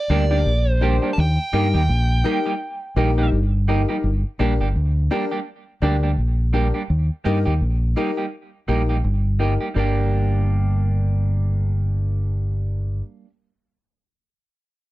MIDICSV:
0, 0, Header, 1, 5, 480
1, 0, Start_track
1, 0, Key_signature, -2, "minor"
1, 0, Tempo, 714796
1, 787, Time_signature, 4, 2, 24, 8
1, 10015, End_track
2, 0, Start_track
2, 0, Title_t, "Lead electric guitar"
2, 0, Program_c, 0, 29
2, 0, Note_on_c, 0, 74, 96
2, 468, Note_off_c, 0, 74, 0
2, 468, Note_on_c, 0, 72, 96
2, 761, Note_on_c, 0, 81, 77
2, 781, Note_off_c, 0, 72, 0
2, 793, Note_off_c, 0, 81, 0
2, 807, Note_on_c, 0, 79, 127
2, 2210, Note_off_c, 0, 79, 0
2, 10015, End_track
3, 0, Start_track
3, 0, Title_t, "Upright piano"
3, 0, Program_c, 1, 0
3, 64, Note_on_c, 1, 62, 93
3, 67, Note_on_c, 1, 67, 87
3, 71, Note_on_c, 1, 70, 107
3, 195, Note_off_c, 1, 62, 0
3, 198, Note_off_c, 1, 67, 0
3, 202, Note_off_c, 1, 70, 0
3, 205, Note_on_c, 1, 62, 83
3, 208, Note_on_c, 1, 67, 78
3, 212, Note_on_c, 1, 70, 90
3, 327, Note_off_c, 1, 62, 0
3, 329, Note_off_c, 1, 67, 0
3, 331, Note_off_c, 1, 70, 0
3, 542, Note_on_c, 1, 62, 89
3, 548, Note_on_c, 1, 67, 85
3, 551, Note_on_c, 1, 70, 92
3, 674, Note_off_c, 1, 62, 0
3, 679, Note_off_c, 1, 67, 0
3, 683, Note_off_c, 1, 70, 0
3, 684, Note_on_c, 1, 62, 74
3, 689, Note_on_c, 1, 67, 65
3, 693, Note_on_c, 1, 70, 76
3, 807, Note_off_c, 1, 62, 0
3, 809, Note_off_c, 1, 67, 0
3, 811, Note_off_c, 1, 70, 0
3, 1025, Note_on_c, 1, 63, 99
3, 1029, Note_on_c, 1, 67, 99
3, 1033, Note_on_c, 1, 70, 106
3, 1182, Note_off_c, 1, 63, 0
3, 1184, Note_off_c, 1, 67, 0
3, 1186, Note_off_c, 1, 70, 0
3, 1503, Note_on_c, 1, 63, 101
3, 1507, Note_on_c, 1, 67, 91
3, 1513, Note_on_c, 1, 70, 121
3, 1661, Note_off_c, 1, 63, 0
3, 1663, Note_off_c, 1, 67, 0
3, 1666, Note_off_c, 1, 70, 0
3, 1988, Note_on_c, 1, 63, 87
3, 1991, Note_on_c, 1, 67, 92
3, 1995, Note_on_c, 1, 70, 105
3, 2119, Note_off_c, 1, 63, 0
3, 2123, Note_off_c, 1, 67, 0
3, 2126, Note_off_c, 1, 70, 0
3, 2129, Note_on_c, 1, 63, 73
3, 2133, Note_on_c, 1, 67, 70
3, 2136, Note_on_c, 1, 70, 87
3, 2249, Note_off_c, 1, 63, 0
3, 2251, Note_off_c, 1, 67, 0
3, 2253, Note_off_c, 1, 70, 0
3, 2470, Note_on_c, 1, 63, 90
3, 2475, Note_on_c, 1, 67, 83
3, 2478, Note_on_c, 1, 70, 96
3, 2602, Note_off_c, 1, 63, 0
3, 2606, Note_off_c, 1, 67, 0
3, 2610, Note_off_c, 1, 70, 0
3, 2612, Note_on_c, 1, 63, 76
3, 2616, Note_on_c, 1, 67, 72
3, 2620, Note_on_c, 1, 70, 78
3, 2731, Note_off_c, 1, 63, 0
3, 2733, Note_off_c, 1, 67, 0
3, 2735, Note_off_c, 1, 70, 0
3, 2949, Note_on_c, 1, 62, 100
3, 2953, Note_on_c, 1, 67, 88
3, 2959, Note_on_c, 1, 70, 104
3, 3104, Note_off_c, 1, 62, 0
3, 3105, Note_off_c, 1, 67, 0
3, 3108, Note_off_c, 1, 70, 0
3, 3430, Note_on_c, 1, 62, 102
3, 3432, Note_on_c, 1, 67, 92
3, 3437, Note_on_c, 1, 70, 108
3, 3584, Note_off_c, 1, 62, 0
3, 3585, Note_off_c, 1, 67, 0
3, 3587, Note_off_c, 1, 70, 0
3, 3906, Note_on_c, 1, 62, 100
3, 3912, Note_on_c, 1, 67, 87
3, 3915, Note_on_c, 1, 70, 94
3, 4062, Note_off_c, 1, 62, 0
3, 4065, Note_off_c, 1, 67, 0
3, 4066, Note_off_c, 1, 70, 0
3, 4386, Note_on_c, 1, 62, 82
3, 4391, Note_on_c, 1, 67, 81
3, 4394, Note_on_c, 1, 70, 91
3, 4542, Note_off_c, 1, 62, 0
3, 4544, Note_off_c, 1, 67, 0
3, 4546, Note_off_c, 1, 70, 0
3, 4867, Note_on_c, 1, 63, 100
3, 4873, Note_on_c, 1, 67, 96
3, 4875, Note_on_c, 1, 70, 114
3, 5023, Note_off_c, 1, 63, 0
3, 5025, Note_off_c, 1, 67, 0
3, 5026, Note_off_c, 1, 70, 0
3, 5345, Note_on_c, 1, 63, 97
3, 5350, Note_on_c, 1, 67, 92
3, 5352, Note_on_c, 1, 70, 107
3, 5501, Note_off_c, 1, 63, 0
3, 5504, Note_off_c, 1, 67, 0
3, 5505, Note_off_c, 1, 70, 0
3, 5827, Note_on_c, 1, 63, 83
3, 5830, Note_on_c, 1, 67, 86
3, 5834, Note_on_c, 1, 70, 97
3, 5982, Note_off_c, 1, 63, 0
3, 5984, Note_off_c, 1, 67, 0
3, 5986, Note_off_c, 1, 70, 0
3, 6306, Note_on_c, 1, 63, 74
3, 6310, Note_on_c, 1, 67, 67
3, 6315, Note_on_c, 1, 70, 90
3, 6462, Note_off_c, 1, 63, 0
3, 6464, Note_off_c, 1, 67, 0
3, 6466, Note_off_c, 1, 70, 0
3, 6549, Note_on_c, 1, 62, 80
3, 6551, Note_on_c, 1, 67, 78
3, 6555, Note_on_c, 1, 70, 96
3, 8731, Note_off_c, 1, 62, 0
3, 8733, Note_off_c, 1, 67, 0
3, 8738, Note_off_c, 1, 70, 0
3, 10015, End_track
4, 0, Start_track
4, 0, Title_t, "Clean electric guitar"
4, 0, Program_c, 2, 27
4, 66, Note_on_c, 2, 55, 82
4, 68, Note_on_c, 2, 58, 97
4, 71, Note_on_c, 2, 62, 96
4, 73, Note_on_c, 2, 67, 83
4, 158, Note_off_c, 2, 55, 0
4, 159, Note_off_c, 2, 58, 0
4, 160, Note_off_c, 2, 62, 0
4, 161, Note_off_c, 2, 67, 0
4, 206, Note_on_c, 2, 67, 64
4, 209, Note_on_c, 2, 62, 74
4, 212, Note_on_c, 2, 58, 69
4, 216, Note_on_c, 2, 55, 56
4, 257, Note_off_c, 2, 67, 0
4, 259, Note_off_c, 2, 62, 0
4, 260, Note_off_c, 2, 58, 0
4, 262, Note_off_c, 2, 55, 0
4, 547, Note_on_c, 2, 55, 71
4, 551, Note_on_c, 2, 58, 75
4, 553, Note_on_c, 2, 62, 82
4, 556, Note_on_c, 2, 67, 91
4, 638, Note_off_c, 2, 55, 0
4, 640, Note_off_c, 2, 58, 0
4, 641, Note_off_c, 2, 62, 0
4, 643, Note_off_c, 2, 67, 0
4, 686, Note_on_c, 2, 67, 59
4, 690, Note_on_c, 2, 62, 62
4, 694, Note_on_c, 2, 55, 55
4, 694, Note_on_c, 2, 58, 66
4, 737, Note_off_c, 2, 67, 0
4, 740, Note_off_c, 2, 62, 0
4, 741, Note_off_c, 2, 55, 0
4, 741, Note_off_c, 2, 58, 0
4, 1028, Note_on_c, 2, 55, 87
4, 1030, Note_on_c, 2, 58, 95
4, 1032, Note_on_c, 2, 63, 88
4, 1035, Note_on_c, 2, 67, 88
4, 1118, Note_off_c, 2, 55, 0
4, 1120, Note_off_c, 2, 58, 0
4, 1121, Note_off_c, 2, 63, 0
4, 1122, Note_off_c, 2, 67, 0
4, 1168, Note_on_c, 2, 67, 59
4, 1172, Note_on_c, 2, 63, 60
4, 1175, Note_on_c, 2, 58, 58
4, 1178, Note_on_c, 2, 55, 52
4, 1218, Note_off_c, 2, 67, 0
4, 1220, Note_off_c, 2, 63, 0
4, 1222, Note_off_c, 2, 58, 0
4, 1223, Note_off_c, 2, 55, 0
4, 1510, Note_on_c, 2, 55, 80
4, 1514, Note_on_c, 2, 58, 90
4, 1515, Note_on_c, 2, 63, 90
4, 1518, Note_on_c, 2, 67, 79
4, 1599, Note_off_c, 2, 55, 0
4, 1601, Note_off_c, 2, 58, 0
4, 1602, Note_off_c, 2, 63, 0
4, 1604, Note_off_c, 2, 67, 0
4, 1650, Note_on_c, 2, 67, 65
4, 1654, Note_on_c, 2, 63, 58
4, 1655, Note_on_c, 2, 58, 54
4, 1658, Note_on_c, 2, 55, 58
4, 1699, Note_off_c, 2, 67, 0
4, 1701, Note_off_c, 2, 63, 0
4, 1702, Note_off_c, 2, 58, 0
4, 1703, Note_off_c, 2, 55, 0
4, 1992, Note_on_c, 2, 55, 80
4, 1995, Note_on_c, 2, 58, 83
4, 1997, Note_on_c, 2, 63, 82
4, 1999, Note_on_c, 2, 67, 81
4, 2080, Note_off_c, 2, 55, 0
4, 2082, Note_off_c, 2, 58, 0
4, 2083, Note_off_c, 2, 63, 0
4, 2084, Note_off_c, 2, 67, 0
4, 2134, Note_on_c, 2, 67, 68
4, 2138, Note_on_c, 2, 63, 67
4, 2139, Note_on_c, 2, 58, 65
4, 2144, Note_on_c, 2, 55, 59
4, 2181, Note_off_c, 2, 67, 0
4, 2183, Note_off_c, 2, 63, 0
4, 2184, Note_off_c, 2, 58, 0
4, 2186, Note_off_c, 2, 55, 0
4, 2471, Note_on_c, 2, 55, 73
4, 2473, Note_on_c, 2, 58, 80
4, 2477, Note_on_c, 2, 63, 81
4, 2477, Note_on_c, 2, 67, 78
4, 2560, Note_off_c, 2, 55, 0
4, 2561, Note_off_c, 2, 58, 0
4, 2563, Note_off_c, 2, 63, 0
4, 2563, Note_off_c, 2, 67, 0
4, 2610, Note_on_c, 2, 67, 66
4, 2614, Note_on_c, 2, 63, 60
4, 2616, Note_on_c, 2, 58, 55
4, 2619, Note_on_c, 2, 55, 57
4, 2659, Note_off_c, 2, 67, 0
4, 2661, Note_off_c, 2, 63, 0
4, 2662, Note_off_c, 2, 58, 0
4, 2663, Note_off_c, 2, 55, 0
4, 2950, Note_on_c, 2, 55, 84
4, 2952, Note_on_c, 2, 58, 96
4, 2953, Note_on_c, 2, 62, 93
4, 2957, Note_on_c, 2, 67, 89
4, 3039, Note_off_c, 2, 55, 0
4, 3040, Note_off_c, 2, 58, 0
4, 3041, Note_off_c, 2, 62, 0
4, 3043, Note_off_c, 2, 67, 0
4, 3094, Note_on_c, 2, 67, 64
4, 3095, Note_on_c, 2, 62, 55
4, 3098, Note_on_c, 2, 58, 54
4, 3100, Note_on_c, 2, 55, 51
4, 3141, Note_off_c, 2, 67, 0
4, 3142, Note_off_c, 2, 62, 0
4, 3143, Note_off_c, 2, 58, 0
4, 3144, Note_off_c, 2, 55, 0
4, 3430, Note_on_c, 2, 55, 83
4, 3432, Note_on_c, 2, 58, 93
4, 3436, Note_on_c, 2, 62, 78
4, 3436, Note_on_c, 2, 67, 76
4, 3519, Note_off_c, 2, 55, 0
4, 3520, Note_off_c, 2, 58, 0
4, 3522, Note_off_c, 2, 62, 0
4, 3522, Note_off_c, 2, 67, 0
4, 3568, Note_on_c, 2, 67, 64
4, 3573, Note_on_c, 2, 62, 60
4, 3576, Note_on_c, 2, 55, 51
4, 3576, Note_on_c, 2, 58, 54
4, 3618, Note_off_c, 2, 67, 0
4, 3620, Note_off_c, 2, 62, 0
4, 3622, Note_off_c, 2, 55, 0
4, 3622, Note_off_c, 2, 58, 0
4, 3908, Note_on_c, 2, 55, 88
4, 3910, Note_on_c, 2, 58, 83
4, 3913, Note_on_c, 2, 62, 97
4, 3916, Note_on_c, 2, 67, 96
4, 3998, Note_off_c, 2, 55, 0
4, 3999, Note_off_c, 2, 58, 0
4, 4001, Note_off_c, 2, 62, 0
4, 4002, Note_off_c, 2, 67, 0
4, 4049, Note_on_c, 2, 67, 58
4, 4052, Note_on_c, 2, 62, 66
4, 4054, Note_on_c, 2, 58, 54
4, 4055, Note_on_c, 2, 55, 59
4, 4098, Note_off_c, 2, 67, 0
4, 4100, Note_off_c, 2, 62, 0
4, 4101, Note_off_c, 2, 55, 0
4, 4101, Note_off_c, 2, 58, 0
4, 4384, Note_on_c, 2, 55, 76
4, 4389, Note_on_c, 2, 58, 72
4, 4389, Note_on_c, 2, 62, 82
4, 4392, Note_on_c, 2, 67, 95
4, 4476, Note_off_c, 2, 55, 0
4, 4478, Note_off_c, 2, 58, 0
4, 4479, Note_off_c, 2, 62, 0
4, 4480, Note_off_c, 2, 67, 0
4, 4527, Note_on_c, 2, 67, 54
4, 4531, Note_on_c, 2, 62, 54
4, 4533, Note_on_c, 2, 58, 56
4, 4535, Note_on_c, 2, 55, 51
4, 4577, Note_off_c, 2, 67, 0
4, 4579, Note_off_c, 2, 62, 0
4, 4580, Note_off_c, 2, 58, 0
4, 4581, Note_off_c, 2, 55, 0
4, 4864, Note_on_c, 2, 55, 90
4, 4865, Note_on_c, 2, 58, 87
4, 4869, Note_on_c, 2, 63, 84
4, 4871, Note_on_c, 2, 67, 92
4, 4956, Note_off_c, 2, 55, 0
4, 4957, Note_off_c, 2, 58, 0
4, 4959, Note_off_c, 2, 63, 0
4, 4959, Note_off_c, 2, 67, 0
4, 5006, Note_on_c, 2, 67, 77
4, 5011, Note_on_c, 2, 63, 59
4, 5013, Note_on_c, 2, 58, 51
4, 5016, Note_on_c, 2, 55, 50
4, 5057, Note_off_c, 2, 67, 0
4, 5059, Note_off_c, 2, 63, 0
4, 5060, Note_off_c, 2, 58, 0
4, 5062, Note_off_c, 2, 55, 0
4, 5349, Note_on_c, 2, 55, 78
4, 5353, Note_on_c, 2, 58, 86
4, 5354, Note_on_c, 2, 63, 81
4, 5356, Note_on_c, 2, 67, 78
4, 5439, Note_off_c, 2, 55, 0
4, 5440, Note_off_c, 2, 58, 0
4, 5441, Note_off_c, 2, 63, 0
4, 5442, Note_off_c, 2, 67, 0
4, 5489, Note_on_c, 2, 67, 55
4, 5492, Note_on_c, 2, 63, 59
4, 5495, Note_on_c, 2, 58, 52
4, 5497, Note_on_c, 2, 55, 55
4, 5538, Note_off_c, 2, 67, 0
4, 5540, Note_off_c, 2, 63, 0
4, 5541, Note_off_c, 2, 58, 0
4, 5542, Note_off_c, 2, 55, 0
4, 5828, Note_on_c, 2, 55, 80
4, 5831, Note_on_c, 2, 58, 83
4, 5834, Note_on_c, 2, 63, 74
4, 5837, Note_on_c, 2, 67, 93
4, 5918, Note_off_c, 2, 55, 0
4, 5919, Note_off_c, 2, 58, 0
4, 5921, Note_off_c, 2, 63, 0
4, 5922, Note_off_c, 2, 67, 0
4, 5971, Note_on_c, 2, 67, 60
4, 5976, Note_on_c, 2, 63, 62
4, 5978, Note_on_c, 2, 58, 60
4, 5979, Note_on_c, 2, 55, 50
4, 6019, Note_off_c, 2, 67, 0
4, 6022, Note_off_c, 2, 58, 0
4, 6022, Note_off_c, 2, 63, 0
4, 6023, Note_off_c, 2, 55, 0
4, 6308, Note_on_c, 2, 55, 69
4, 6310, Note_on_c, 2, 58, 76
4, 6313, Note_on_c, 2, 63, 75
4, 6317, Note_on_c, 2, 67, 83
4, 6398, Note_off_c, 2, 55, 0
4, 6399, Note_off_c, 2, 58, 0
4, 6400, Note_off_c, 2, 63, 0
4, 6402, Note_off_c, 2, 67, 0
4, 6451, Note_on_c, 2, 67, 60
4, 6454, Note_on_c, 2, 63, 56
4, 6456, Note_on_c, 2, 58, 52
4, 6457, Note_on_c, 2, 55, 44
4, 6499, Note_off_c, 2, 67, 0
4, 6501, Note_off_c, 2, 63, 0
4, 6502, Note_off_c, 2, 55, 0
4, 6502, Note_off_c, 2, 58, 0
4, 6543, Note_on_c, 2, 55, 78
4, 6555, Note_on_c, 2, 58, 91
4, 6566, Note_on_c, 2, 62, 86
4, 6577, Note_on_c, 2, 67, 86
4, 8893, Note_off_c, 2, 55, 0
4, 8905, Note_off_c, 2, 58, 0
4, 8917, Note_off_c, 2, 62, 0
4, 8928, Note_off_c, 2, 67, 0
4, 10015, End_track
5, 0, Start_track
5, 0, Title_t, "Fingered electric bass"
5, 0, Program_c, 3, 33
5, 65, Note_on_c, 3, 38, 99
5, 290, Note_off_c, 3, 38, 0
5, 307, Note_on_c, 3, 34, 104
5, 661, Note_off_c, 3, 34, 0
5, 791, Note_on_c, 3, 39, 123
5, 920, Note_off_c, 3, 39, 0
5, 1029, Note_on_c, 3, 43, 96
5, 1159, Note_off_c, 3, 43, 0
5, 1170, Note_on_c, 3, 39, 94
5, 1261, Note_off_c, 3, 39, 0
5, 1270, Note_on_c, 3, 34, 105
5, 1492, Note_off_c, 3, 34, 0
5, 1990, Note_on_c, 3, 34, 109
5, 2212, Note_off_c, 3, 34, 0
5, 2228, Note_on_c, 3, 31, 103
5, 2581, Note_off_c, 3, 31, 0
5, 2710, Note_on_c, 3, 31, 99
5, 2839, Note_off_c, 3, 31, 0
5, 2953, Note_on_c, 3, 34, 90
5, 3081, Note_off_c, 3, 34, 0
5, 3093, Note_on_c, 3, 31, 83
5, 3183, Note_off_c, 3, 31, 0
5, 3194, Note_on_c, 3, 38, 99
5, 3414, Note_off_c, 3, 38, 0
5, 3909, Note_on_c, 3, 38, 98
5, 4131, Note_off_c, 3, 38, 0
5, 4150, Note_on_c, 3, 34, 96
5, 4502, Note_off_c, 3, 34, 0
5, 4632, Note_on_c, 3, 39, 102
5, 4760, Note_off_c, 3, 39, 0
5, 4873, Note_on_c, 3, 43, 93
5, 5001, Note_off_c, 3, 43, 0
5, 5015, Note_on_c, 3, 39, 92
5, 5104, Note_off_c, 3, 39, 0
5, 5111, Note_on_c, 3, 34, 98
5, 5332, Note_off_c, 3, 34, 0
5, 5832, Note_on_c, 3, 34, 91
5, 6053, Note_off_c, 3, 34, 0
5, 6072, Note_on_c, 3, 31, 104
5, 6423, Note_off_c, 3, 31, 0
5, 6553, Note_on_c, 3, 31, 102
5, 8735, Note_off_c, 3, 31, 0
5, 10015, End_track
0, 0, End_of_file